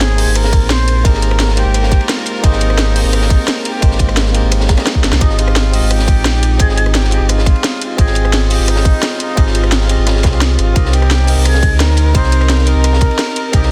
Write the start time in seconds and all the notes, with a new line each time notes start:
Already playing: G#1 A#3 C4 D#4 G#4 A#4 C5 G5
0.01 snare, closed hi-hat, ride
0.16 A#3 D#4 G4 G#4, closed hi-hat, open hi-hat
0.20 C5
0.27 G#1
0.35 A#4, cross-stick, closed hi-hat, ride
0.44 snare
0.53 kick, closed hi-hat, ride
0.62 A#1
0.69 C5, snare, closed hi-hat, ride
0.88 closed hi-hat, ride
1.03 G#1 A#3 D#4 G4 G#4 A#4 C5, kick, closed hi-hat, ride
1.14 snare
1.22 closed hi-hat, ride
1.31 cross-stick, ride
1.40 snare, closed hi-hat, ride
1.48 snare
1.55 G#3 A#3 D#4 G4, closed hi-hat, ride
1.59 C5
1.65 G#1
1.74 cross-stick, closed hi-hat, ride
1.83 snare
1.92 kick, closed hi-hat, ride
2.01 ride
2.09 F4, snare, closed hi-hat, ride
2.26 closed hi-hat, ride
2.41 G#1 A#3 D#4 G4 G#4, kick, closed hi-hat, ride
2.46 C5
2.52 snare
2.61 closed hi-hat, ride
2.70 cross-stick, ride
2.78 snare, closed hi-hat, ride
2.94 A#3 D#4 G4 G#4, closed hi-hat, open hi-hat
2.98 C5
3.04 G#1
3.13 D#4, cross-stick, closed hi-hat, ride
3.21 snare
3.30 kick, closed hi-hat, ride
3.48 snare, closed hi-hat, ride
3.65 G4, closed hi-hat, ride
3.80 G#1 G#3 A#3 D#4 G4, kick, closed hi-hat, ride
3.84 C5
3.91 snare
3.99 kick, closed hi-hat, ride
4.09 cross-stick, ride
4.16 snare, closed hi-hat, ride
4.26 snare
4.33 A#3 D#4 G4 G#4, closed hi-hat, ride
4.37 C5
4.43 G#1
4.52 cross-stick, closed hi-hat, ride
4.60 snare
4.69 kick, snare, closed hi-hat, ride
4.76 A#3 D#4 G4 G#4 D#5, cross-stick, snare, ride
4.86 snare, closed hi-hat, ride
4.95 kick
5.03 G#1 D4, snare, closed hi-hat, ride
5.13 C2, snare
5.19 G#1 C4 D#4 F4 G4 G#4, kick, closed hi-hat, ride
5.23 D#5
5.29 snare
5.38 F4, closed hi-hat, ride
5.48 cross-stick, ride
5.56 snare, closed hi-hat, ride
5.71 G#3 C4 F4 G4 D#5, closed hi-hat, open hi-hat
5.82 G#1
5.90 G4, cross-stick, closed hi-hat, ride
5.99 snare
6.08 kick, closed hi-hat, ride
6.17 A#1
6.25 snare, closed hi-hat, ride
6.43 closed hi-hat, ride
6.58 G#1 C4 F4 G#4 G5, kick, closed hi-hat, ride
6.62 D#5
6.69 snare
6.78 closed hi-hat, ride
6.86 cross-stick, ride
6.94 G4, snare, closed hi-hat, ride
7.04 snare
7.10 C4 F4 G4 G#4, closed hi-hat, ride
7.14 D#5
7.21 G#1
7.29 F4, cross-stick, closed hi-hat, ride
7.38 snare
7.46 kick, closed hi-hat, ride
7.56 ride
7.63 snare, closed hi-hat, ride
7.82 closed hi-hat, ride
7.97 G#1 C4 F4 G#4 G5, kick, closed hi-hat, ride
8.01 D#5
8.07 snare
8.15 closed hi-hat, ride
8.25 cross-stick, ride
8.33 snare, closed hi-hat, ride
8.49 C4 F4 G4 G#4 D#5, closed hi-hat, open hi-hat
8.59 G#1
8.68 D#4, cross-stick, closed hi-hat, ride
8.76 snare
8.85 kick, closed hi-hat, ride
9.03 snare, closed hi-hat, ride
9.20 D#4, closed hi-hat, ride
9.35 G#1 C4 F4 G4 G#4, kick, closed hi-hat, ride
9.39 D#5
9.47 snare
9.55 closed hi-hat, ride
9.64 cross-stick, ride
9.72 snare, closed hi-hat, ride
9.81 snare
9.87 C4 F4 G4 G#4, closed hi-hat, ride
9.92 D#5
9.98 G#1
10.07 cross-stick, snare, closed hi-hat, ride
10.16 snare
10.23 C2, kick, snare, closed hi-hat, ride
10.31 C4 F4 G4 G#4 F5, ride
10.41 snare, closed hi-hat, ride
10.59 G#1 F4, cross-stick, closed hi-hat, ride
10.74 C2 C4 D#4 G4 A#4, kick, closed hi-hat, ride
10.78 D#5
10.85 snare
10.93 G4, closed hi-hat, ride
11.02 cross-stick, ride
11.11 snare, closed hi-hat, ride
11.26 C4 D#4 A#4 D#5 G5, closed hi-hat, open hi-hat
11.37 C2
11.45 G#4, cross-stick, closed hi-hat, ride
11.54 snare
11.63 kick, closed hi-hat, ride
11.72 D2
11.80 A#4, snare, closed hi-hat, ride
11.97 closed hi-hat, ride
12.13 C2 C4 D#4 G4 A#4 C5 D#5, kick, closed hi-hat, ride
12.23 snare
12.32 closed hi-hat, ride
12.41 cross-stick, ride
12.49 snare, closed hi-hat, ride
12.58 snare
12.65 C4 D#4 G4 A#4, closed hi-hat, ride
12.69 D#5
12.75 C2
12.84 cross-stick, closed hi-hat, ride
12.93 snare
13.01 kick, closed hi-hat, ride
13.11 ride
13.19 snare, closed hi-hat, ride
13.36 closed hi-hat, ride
13.52 C2 C4 D#4 G4 A#4 D#5, kick, closed hi-hat, ride
13.62 snare